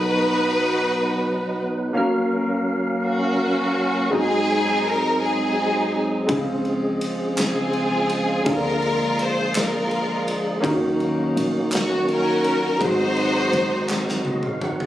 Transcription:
0.00 0.84 B2 medium
0.00 1.91 F#3 medium
0.00 1.92 F#3 medium
0.00 1.91 B3 medium
0.00 1.93 B3 medium
0.00 1.56 D#4 medium
0.00 1.92 D#4 medium
0.00 1.93 D#4 medium
0.00 1.56 F#4 medium
0.00 1.92 F#4 medium
0.00 1.62 B4 loud
0.00 1.92 B4 medium
0.00 1.96 A#5 medium
1.93 4.07 A#3 medium
1.93 4.08 C#4 medium
1.93 4.09 F#4 medium
1.93 4.09 A#4 medium
1.93 4.08 F5 medium
1.97 4.09 F#3 medium
1.97 4.09 A#3 medium
1.97 4.10 C#4 medium
1.97 4.09 A#4 medium
1.97 4.09 F5 medium
3.06 4.10 A#3 medium
3.06 4.10 C#4 medium
3.06 4.10 F#4 medium
4.10 5.17 G#2 medium
4.10 6.24 G#3 medium
4.10 6.24 C4 medium
4.10 6.25 D#4 medium
4.10 6.25 F#4 medium
4.10 6.26 G#4 medium
4.14 6.26 F#3 medium
4.14 6.27 G#3 medium
4.14 5.18 C4 medium
4.14 6.26 C4 medium
4.14 5.18 D#4 medium
4.14 6.26 D#4 medium
4.14 4.86 G#4 loud
4.14 6.26 G#4 medium
4.86 5.21 A#4 loud
5.22 6.27 C4 medium
5.22 6.26 D#4 medium
5.22 6.03 G#4 medium
6.27 7.03 C#2 loud
6.27 8.42 C#3 medium
6.27 7.34 C#3 medium
6.27 8.42 F3 medium
6.27 8.41 G#3 medium
6.27 8.42 G#3 medium
6.27 8.42 C4 medium
6.27 6.36 E4 medium
6.27 8.42 G#4 medium
6.27 8.43 G#4 medium
6.27 kick loud
6.27 ride medium
6.36 8.45 F4 medium
6.65 ride soft
7.01 8.42 G#1 medium
7.01 ride medium
7.37 8.43 C4 medium
7.37 8.43 F4 medium
7.37 8.43 G#4 medium
7.37 snare loud
7.37 clap loud
7.37 ride medium
7.73 ride soft
8.10 ride medium
8.43 9.20 D2 loud
8.43 9.50 D3 medium
8.43 10.59 F3 medium
8.43 10.58 G#3 medium
8.43 10.59 G#3 medium
8.43 10.58 A#3 medium
8.43 10.59 A#3 medium
8.43 8.52 C4 soft
8.43 10.60 D4 medium
8.43 10.59 F4 medium
8.43 10.59 G#4 medium
8.43 10.60 G#4 medium
8.43 kick loud
8.43 ride medium
8.49 10.62 D4 medium
8.49 9.52 F4 medium
8.49 9.21 A#4 loud
8.82 ride soft
9.18 10.59 G#1 medium
9.18 ride medium
9.23 9.57 C5 loud
9.55 10.61 F4 medium
9.55 snare loud
9.55 clap loud
9.55 ride loud
9.59 10.38 A#4 medium
9.91 ride soft
10.28 ride medium
10.60 11.32 D#2 loud
10.60 11.67 D#3 medium
10.60 12.77 D#3 medium
10.60 12.76 F#3 medium
10.60 12.75 A#3 medium
10.60 12.77 A#3 medium
10.60 12.76 C#4 medium
10.60 12.77 C#4 medium
10.60 12.76 D#4 medium
10.60 10.70 F4 medium
10.60 12.76 F#4 medium
10.60 kick loud
10.60 ride medium
10.65 12.77 A#4 medium
10.70 12.79 F#4 medium
11.00 ride soft
11.36 12.77 A#1 loud
11.36 ride medium
11.72 12.07 F#4 medium
11.72 snare loud
11.72 clap loud
11.72 ride loud
12.08 12.78 C#4 medium
12.08 12.78 F#4 medium
12.08 12.82 A#4 loud
12.08 ride soft
12.44 ride medium
12.79 13.49 G#1 loud
12.79 13.85 G#2 medium
12.79 14.86 D#3 medium
12.79 14.86 F#3 medium
12.79 14.86 G#3 medium
12.79 14.86 C4 medium
12.79 14.86 D#4 medium
12.79 14.86 F#4 medium
12.79 14.86 G#4 medium
12.79 kick loud
12.79 ride medium
12.83 14.23 D#4 medium
12.83 14.23 F#4 medium
12.83 14.27 C5 loud
13.17 ride soft
13.53 14.86 F#1 loud
13.53 ride medium
13.89 snare medium
13.89 clap loud
14.09 snare medium
14.25 14.42 D#5 medium
14.25 high tom medium
14.43 14.61 F5 medium
14.43 mid tom medium
14.61 14.86 F#5 medium
14.61 mid tom loud
14.80 floor tom medium

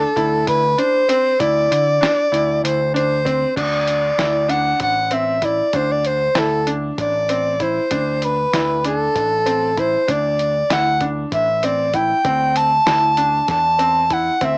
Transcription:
0.00 0.45 A4 medium
0.16 0.43 D2 medium
0.16 0.60 E4 medium
0.16 kick medium
0.16 closed hi-hat medium
0.47 0.74 D2 medium
0.47 0.80 B4 medium
0.47 kick medium
0.47 closed hi-hat medium
0.78 1.00 D4 medium
0.78 1.41 C5 loud
0.78 closed hi-hat soft
1.09 1.31 C4 medium
1.09 closed hi-hat medium
1.39 1.67 D2 medium
1.39 1.84 E4 medium
1.39 2.64 D5 loud
1.39 kick loud
1.39 closed hi-hat medium
1.71 1.98 D3 medium
1.71 closed hi-hat medium
2.01 2.23 D4 medium
2.01 snare loud
2.01 closed hi-hat medium
2.32 2.59 D2 medium
2.32 2.76 E4 medium
2.32 closed hi-hat medium
2.64 3.44 D2 medium
2.64 2.93 C5 medium
2.64 closed hi-hat medium
2.94 3.16 D4 medium
2.94 3.53 C5 medium
2.94 closed hi-hat medium
3.25 3.48 C4 medium
3.25 kick medium
3.25 closed hi-hat medium
3.56 4.10 D2 medium
3.56 4.00 D4 medium
3.56 4.51 D5 medium
3.56 kick medium
3.56 closed hi-hat medium
3.56 crash medium
3.88 closed hi-hat soft
4.18 4.72 D2 medium
4.18 4.40 E4 medium
4.18 snare medium
4.18 closed hi-hat medium
4.48 4.93 D4 medium
4.48 4.81 F#5 medium
4.48 closed hi-hat soft
4.80 5.60 A1 medium
4.80 5.15 F#5 medium
4.80 kick medium
4.80 closed hi-hat medium
5.11 5.34 C4 medium
5.11 5.46 E5 medium
5.11 closed hi-hat soft
5.42 5.65 E4 medium
5.42 5.77 D5 medium
5.42 kick medium
5.42 closed hi-hat soft
5.73 6.27 D2 medium
5.73 6.18 D4 medium
5.73 5.93 C5 medium
5.73 kick medium
5.73 closed hi-hat medium
5.92 6.08 D5 medium
6.05 6.40 C5 medium
6.05 closed hi-hat medium
6.35 6.90 D2 medium
6.35 6.58 E4 medium
6.35 6.73 A4 medium
6.35 snare medium
6.35 closed hi-hat medium
6.67 7.11 D4 medium
6.67 closed hi-hat medium
6.98 7.78 A1 medium
6.98 7.64 D5 medium
6.98 kick medium
6.98 closed hi-hat medium
7.29 7.51 C4 medium
7.29 closed hi-hat soft
7.60 7.82 E4 medium
7.60 8.26 C5 medium
7.60 kick medium
7.60 closed hi-hat medium
7.91 8.45 D2 medium
7.91 8.35 D4 medium
7.91 kick medium
7.91 closed hi-hat medium
8.22 8.86 B4 medium
8.22 closed hi-hat medium
8.53 9.07 D2 medium
8.53 8.75 E4 medium
8.53 snare medium
8.53 closed hi-hat medium
8.84 9.28 D4 medium
8.84 9.81 A4 medium
8.84 closed hi-hat medium
9.15 9.95 A1 medium
9.15 kick medium
9.15 closed hi-hat medium
9.46 9.68 C4 medium
9.46 closed hi-hat soft
9.78 9.99 E4 medium
9.78 10.13 C5 medium
9.78 kick medium
9.78 closed hi-hat soft
10.08 10.62 D2 medium
10.08 10.52 D4 medium
10.08 10.74 D5 medium
10.08 kick medium
10.08 closed hi-hat medium
10.39 closed hi-hat soft
10.70 11.24 D2 medium
10.70 10.92 E4 medium
10.70 11.07 F#5 medium
10.70 snare medium
10.70 closed hi-hat medium
11.01 11.45 D4 medium
11.01 kick medium
11.01 closed hi-hat soft
11.32 12.12 A1 medium
11.32 11.67 E5 medium
11.32 kick medium
11.32 closed hi-hat medium
11.63 11.85 C4 medium
11.63 11.97 D5 medium
11.63 closed hi-hat soft
11.94 12.16 E4 medium
11.94 12.59 G5 medium
11.94 kick medium
11.94 closed hi-hat medium
12.25 12.78 D2 medium
12.25 12.69 C4 medium
12.25 kick medium
12.25 closed hi-hat medium
12.56 13.49 A5 loud
12.56 closed hi-hat medium
12.86 13.40 D2 medium
12.86 13.08 E4 medium
12.86 snare medium
12.86 closed hi-hat medium
13.17 13.62 D4 medium
13.17 closed hi-hat medium
13.48 14.29 E2 medium
13.48 14.14 A5 medium
13.48 kick medium
13.48 snare soft
13.48 closed hi-hat medium
13.79 14.01 C4 medium
13.79 closed hi-hat soft
14.10 14.32 E4 medium
14.10 14.46 F#5 medium
14.10 kick medium
14.10 closed hi-hat medium
14.41 14.58 D2 medium
14.41 14.58 C4 medium
14.41 14.58 E5 medium
14.41 kick medium
14.41 closed hi-hat medium

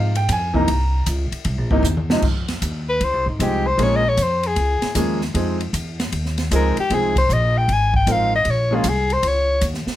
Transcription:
0.00 0.27 G#2 medium
0.00 0.10 D#4 medium
0.00 0.10 G#4 medium
0.00 0.16 F5 medium
0.15 0.28 G5 loud
0.15 ride medium
0.28 0.66 F2 medium
0.28 kick soft
0.28 hi-hat pedal soft
0.28 ride medium
0.33 0.55 G#5 medium
0.54 0.65 C3 medium
0.54 0.66 E3 medium
0.54 0.66 A#3 medium
0.54 0.66 D#4 medium
0.54 1.04 A#5 medium
0.54 kick soft
0.68 1.05 C2 medium
0.68 kick soft
0.68 ride medium
1.06 1.30 C#2 medium
1.06 kick soft
1.06 hi-hat pedal medium
1.06 ride medium
1.31 muted upright bass stroke soft
1.31 ride medium
1.45 1.57 C2 medium
1.45 kick soft
1.45 ride medium
1.57 1.70 A#1 medium
1.70 1.82 G1 medium
1.70 1.82 C3 medium
1.70 1.83 E3 medium
1.70 1.83 A#3 medium
1.70 1.83 D#4 medium
1.70 kick medium
1.83 2.21 E2 medium
1.83 hi-hat pedal medium
1.83 mid tom soft
1.97 mid tom medium
2.10 2.22 C3 medium
2.10 2.22 F3 medium
2.10 2.22 G#3 medium
2.10 2.22 D#4 medium
2.10 snare medium
2.22 2.60 F2 medium
2.22 kick medium
2.22 crash medium
2.48 snare soft
2.48 ride soft
2.62 2.99 D#2 medium
2.62 kick soft
2.62 hi-hat pedal medium
2.62 ride medium
2.89 3.06 B4 medium
3.01 3.13 C#2 medium
3.01 3.28 C5 medium
3.01 kick soft
3.01 ride medium
3.13 3.25 C2 medium
3.26 3.38 G#1 medium
3.26 3.44 D#4 soft
3.39 3.77 C2 medium
3.39 3.62 F3 medium
3.39 3.63 G#3 medium
3.39 3.63 C4 medium
3.39 3.63 D#4 medium
3.39 3.68 G4 medium
3.39 3.63 G#4 medium
3.39 kick soft
3.39 hi-hat pedal soft
3.39 ride medium
3.67 3.85 C5 medium
3.77 4.16 A#1 medium
3.77 4.01 F3 medium
3.77 4.01 G#3 medium
3.77 4.01 A#3 medium
3.77 4.02 C#4 medium
3.77 4.02 G#4 medium
3.77 kick soft
3.77 ride medium
3.83 3.98 C#5 medium
3.96 4.10 D#5 medium
4.09 4.24 C#5 medium
4.17 4.55 F2 medium
4.17 kick soft
4.17 hi-hat pedal medium
4.17 ride medium
4.22 4.48 C5 medium
4.43 4.97 G#4 medium
4.43 ride soft
4.56 4.80 C#2 medium
4.56 kick soft
4.56 ride medium
4.82 muted upright bass stroke soft
4.82 snare medium
4.82 ride soft
4.95 5.33 D#2 medium
4.95 5.18 F3 medium
4.95 5.18 G#3 medium
4.95 5.19 A#3 medium
4.95 5.19 C#4 medium
4.95 5.19 G#4 medium
4.95 kick soft
4.95 hi-hat pedal medium
4.95 ride medium
5.21 snare soft
5.34 5.72 F2 medium
5.34 5.57 F3 medium
5.34 5.57 G#3 medium
5.34 5.58 C4 medium
5.34 5.58 D#4 medium
5.34 5.58 G#4 medium
5.34 kick soft
5.34 ride medium
5.61 ride soft
5.73 6.11 E2 medium
5.73 kick soft
5.73 hi-hat pedal medium
5.73 ride medium
6.00 snare medium
6.00 ride soft
6.12 6.50 D#2 medium
6.12 kick soft
6.12 ride medium
6.26 snare soft
6.38 snare soft
6.38 ride soft
6.51 6.75 C#2 medium
6.51 6.74 F3 medium
6.51 6.75 G#3 medium
6.51 6.75 C4 medium
6.51 6.75 D#4 medium
6.51 6.75 G#4 medium
6.51 kick soft
6.51 hi-hat pedal medium
6.51 ride medium
6.55 6.77 A#4 medium
6.77 6.96 G4 medium
6.77 muted upright bass stroke soft
6.77 ride soft
6.90 7.28 C2 medium
6.90 7.13 F3 medium
6.90 7.13 G#3 medium
6.90 7.14 C4 medium
6.90 7.14 D#4 medium
6.90 7.14 G#4 medium
6.90 kick soft
6.90 ride medium
6.95 7.17 G#4 medium
7.16 7.35 C5 medium
7.16 kick medium
7.16 ride medium
7.29 7.67 A#1 medium
7.29 7.59 D#5 medium
7.29 kick soft
7.29 hi-hat pedal soft
7.58 7.74 G5 medium
7.68 8.06 G#1 medium
7.68 kick soft
7.68 ride medium
7.73 7.96 G#5 medium
7.94 8.13 G5 medium
7.94 kick medium
8.07 8.44 A1 medium
8.07 8.30 F3 medium
8.07 8.30 G#3 medium
8.07 8.30 C4 medium
8.07 8.30 D#4 medium
8.07 8.30 A#4 medium
8.07 kick soft
8.07 hi-hat pedal soft
8.07 ride medium
8.12 8.35 F5 medium
8.36 8.52 D#5 medium
8.45 8.83 A#1 medium
8.45 kick soft
8.45 ride medium
8.50 8.76 C#5 medium
8.71 8.83 F3 medium
8.71 8.83 G#3 medium
8.71 8.83 A#3 medium
8.71 8.84 C#4 medium
8.71 8.91 F4 medium
8.71 8.84 G#4 medium
8.84 9.22 C2 medium
8.84 kick soft
8.84 hi-hat pedal medium
8.84 ride medium
8.89 9.14 G#4 medium
9.10 9.29 C5 medium
9.10 ride soft
9.23 9.61 C#2 medium
9.23 kick soft
9.23 ride medium
9.28 9.64 C#5 medium
9.61 9.85 D#2 medium
9.61 kick soft
9.61 hi-hat pedal soft
9.61 ride medium
9.74 snare soft
9.86 muted upright bass stroke soft
9.86 snare soft

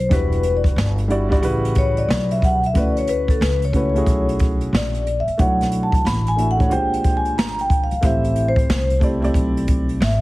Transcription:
0.00 0.13 C5 medium
0.09 0.74 E1 medium
0.09 0.98 G3 medium
0.09 0.98 D4 medium
0.09 0.99 E4 medium
0.09 0.99 F#4 medium
0.09 1.00 B4 medium
0.09 0.57 B4 medium
0.09 kick loud
0.09 closed hi-hat loud
0.32 closed hi-hat medium
0.43 closed hi-hat medium
0.57 0.87 D5 medium
0.64 kick medium
0.64 closed hi-hat medium
0.76 1.39 G1 medium
0.76 snare loud
0.98 closed hi-hat medium
1.08 1.27 G3 medium
1.08 1.27 D4 medium
1.08 1.28 E4 medium
1.08 1.28 F#4 medium
1.08 1.29 D5 medium
1.08 closed hi-hat medium
1.29 1.39 G3 medium
1.29 1.43 D4 medium
1.29 1.41 E4 medium
1.29 1.42 F#4 medium
1.29 1.44 D5 loud
1.29 kick medium
1.29 closed hi-hat soft
1.41 2.05 A1 medium
1.41 2.57 C#3 medium
1.41 2.57 G3 medium
1.41 2.58 E4 medium
1.41 2.58 F#4 medium
1.41 2.59 B4 loud
1.41 closed hi-hat loud
1.65 closed hi-hat medium
1.75 1.99 C#5 medium
1.75 kick medium
1.75 closed hi-hat medium
1.97 2.32 D5 medium
1.97 closed hi-hat soft
2.08 2.71 B1 medium
2.08 snare loud
2.31 2.43 E5 medium
2.31 closed hi-hat medium
2.42 2.63 F#5 medium
2.42 kick medium
2.42 closed hi-hat medium
2.63 2.77 E5 medium
2.63 closed hi-hat soft
2.73 3.38 D2 medium
2.73 3.62 A3 medium
2.73 3.63 C#4 medium
2.73 3.63 E4 medium
2.73 3.64 F#4 medium
2.73 3.64 B4 medium
2.73 kick loud
2.73 closed hi-hat medium
2.79 2.88 D5 medium
2.97 3.09 C#5 medium
2.97 closed hi-hat medium
3.07 3.31 B4 medium
3.07 closed hi-hat medium
3.28 3.35 A4 medium
3.28 kick medium
3.28 closed hi-hat medium
3.41 4.04 C#2 loud
3.41 3.61 B4 medium
3.41 snare medium
3.62 4.25 C#5 medium
3.62 closed hi-hat medium
3.73 3.91 A3 medium
3.73 3.92 C#4 medium
3.73 3.92 E4 medium
3.73 3.92 F#4 medium
3.73 3.93 B4 medium
3.73 kick medium
3.73 closed hi-hat medium
3.94 5.02 A3 medium
3.94 5.03 C#4 medium
3.94 5.03 E4 medium
3.94 5.04 F#4 medium
3.94 5.04 G#4 medium
3.94 closed hi-hat soft
4.06 4.69 B1 medium
4.06 kick medium
4.06 closed hi-hat medium
4.29 closed hi-hat medium
4.39 kick loud
4.39 closed hi-hat medium
4.61 closed hi-hat soft
4.73 5.24 A#1 medium
4.73 5.20 D5 medium
4.73 snare loud
4.94 closed hi-hat medium
5.07 closed hi-hat medium
5.20 5.41 E5 medium
5.27 muted upright bass stroke soft
5.27 closed hi-hat soft
5.37 6.02 B1 loud
5.37 6.26 A3 medium
5.37 6.27 D4 medium
5.37 6.27 E4 medium
5.37 6.27 F#4 medium
5.37 6.28 C#5 medium
5.37 5.85 F#5 medium
5.37 kick loud
5.37 closed hi-hat loud
5.61 snare soft
5.61 closed hi-hat medium
5.72 closed hi-hat medium
5.83 6.03 A5 medium
5.92 kick medium
5.92 closed hi-hat medium
6.05 6.67 A1 medium
6.05 6.28 B5 loud
6.05 snare loud
6.26 6.48 G#5 loud
6.26 closed hi-hat medium
6.36 6.55 A3 medium
6.36 6.55 D4 medium
6.36 6.56 E4 medium
6.36 6.56 F#4 medium
6.36 6.57 E5 medium
6.36 closed hi-hat medium
6.51 6.72 F#5 loud
6.57 6.70 A3 medium
6.57 6.68 D4 medium
6.57 6.71 E4 medium
6.57 6.71 F#4 medium
6.57 6.71 C#5 medium
6.57 kick medium
6.57 closed hi-hat soft
6.69 7.37 A#1 medium
6.69 7.85 G#3 medium
6.69 7.85 D4 medium
6.69 7.85 F4 medium
6.69 7.86 G4 medium
6.69 7.86 C5 medium
6.69 7.12 G5 loud
6.69 closed hi-hat loud
6.94 closed hi-hat medium
7.04 kick medium
7.04 closed hi-hat medium
7.17 7.38 G#5 medium
7.25 closed hi-hat soft
7.37 7.88 G#1 medium
7.37 7.60 A#5 medium
7.37 snare loud
7.59 7.82 G5 medium
7.59 closed hi-hat medium
7.70 kick loud
7.70 closed hi-hat medium
7.84 8.05 F5 medium
7.91 muted upright bass stroke soft
7.91 closed hi-hat soft
8.01 8.65 A1 loud
8.01 8.90 A3 medium
8.01 8.90 C4 medium
8.01 8.90 E4 medium
8.01 8.91 G4 medium
8.01 8.91 C5 medium
8.01 kick loud
8.01 closed hi-hat loud
8.05 8.49 E5 medium
8.24 closed hi-hat soft
8.35 closed hi-hat medium
8.48 9.09 C5 medium
8.56 kick medium
8.56 closed hi-hat medium
8.70 9.32 C2 loud
8.70 snare loud
8.90 closed hi-hat medium
9.00 9.18 A3 medium
9.00 9.19 C4 medium
9.00 9.19 E4 medium
9.00 9.20 G4 medium
9.00 9.20 D5 medium
9.00 kick medium
9.00 closed hi-hat medium
9.20 10.21 A3 medium
9.20 10.21 C4 medium
9.20 10.21 E4 medium
9.20 10.21 G4 medium
9.20 10.21 D5 medium
9.20 closed hi-hat soft
9.34 9.97 B1 medium
9.34 kick medium
9.34 closed hi-hat medium
9.57 closed hi-hat medium
9.68 kick medium
9.68 closed hi-hat medium
9.89 closed hi-hat soft
10.00 10.21 G#1 medium
10.00 10.21 E5 medium
10.00 snare loud

